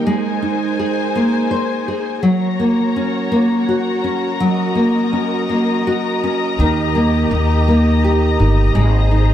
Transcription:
Already playing: G3 A#3 D#4 A#4
0.06 G#3 C5 G#5
0.42 D#4
0.79 G#4
1.15 A#3
1.51 C5
1.88 G#4
2.23 F#3 F#4 A#4 C#5 A#5
2.59 A#3
2.96 C#4
3.32 A#3
3.69 F#4
4.04 C#4
4.40 F#3 D#5
4.75 A#3
5.13 C#4
5.49 A#3
5.87 F#4
6.24 C#4
6.57 D#2 D#3 G4
6.95 A#3
7.31 D#2 D#4
7.68 A#3
8.04 G4
8.40 G1 D#4
8.75 G#1 G#3 G#4 C5
9.11 D#4

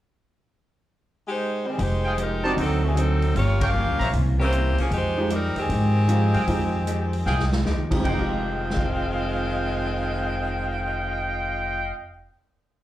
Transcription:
1.28 G#3 D#4 G4 C5
1.67 D#3 G3 C4 G#4
1.78 F1 F3 G#3 D#4 G4 C5, kick, open hi-hat
2.04 G#4 D#5 F5 G5
2.17 F3 G#3 D#4 G4 A#4, closed hi-hat
2.43 C4 D4 D#4 F#4 C5 D5 D#5 A5
2.56 D2 D3 F#3 C4 D#4 A4, kick, open hi-hat
2.84 E3 A3 C4 G#4
2.95 D3 F#3 C4 D#4 A4, closed hi-hat
3.22 open hi-hat
3.34 G1 G2 F3 A#3 C#4 F4 G4 C#5, kick, open hi-hat
3.61 C#4 G4 A#4 C#5 F5 G5, kick, ride
3.73 G2 F3 A#3 C#4
3.87 C#2
3.99 A#1 C5 C#5 E5 A#5, open hi-hat
4.13 C2 C3 E3 A#3 C#4, kick, open hi-hat
4.39 E3 A#3 C4 C#4 E4 G4 A#4 C5
4.52 C3 E3 A#3 C#4, closed hi-hat
4.78 F3 A#3 C#4 G#4, muted upright bass stroke, open hi-hat
4.91 F2 F3 G#3 D#4 G4 C5, kick, open hi-hat
5.18 F3 G#3 D#4 G4
5.30 F3 G3 G#3 C4 D#4 G4 A#4, closed hi-hat
5.56 D#2 D#3 C4 G4 G#4, open hi-hat
5.69 G#2 F3 G#3 D#4 G4, kick, open hi-hat
6.08 F3 G#3 D#4 F4 G4, closed hi-hat
6.34 F#2 G#4 D#5 F5 G5, open hi-hat
6.47 F2 F3 G#3 D#4 G4 G5, kick, open hi-hat
6.87 F3 G#3 D#4 G4, closed hi-hat
7.13 open hi-hat
7.26 C2 F3 G#3 D#4 G4 G#4 D#5 F5 G5, snare
7.39 snare
7.52 snare
7.65 D#2 F3 G#3 D#4 G4, snare
7.91 F2 F3 G#3 D#4 G4, kick, crash
8.00 F3 D#5 F5 G5
8.05 F1 D#3 G#3 C4 F4, kick, crash
8.09 D#4 G4
8.19 G4
8.70 snare
8.77 kick

